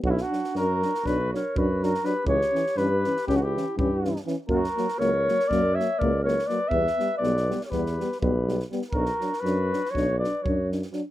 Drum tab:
SD |-oooo-ooo-o---ooo-|-oooo-ooo-o---ooo-|-oooo-ooo-o---ooo-|-oo-oooooooo--oooo|
BD |o-------o---o-----|o-------o---o-----|o-------o---o-----|o-------o---o-----|

SD |-oooo-ooo-o---ooo-|
BD |o-------o---o-----|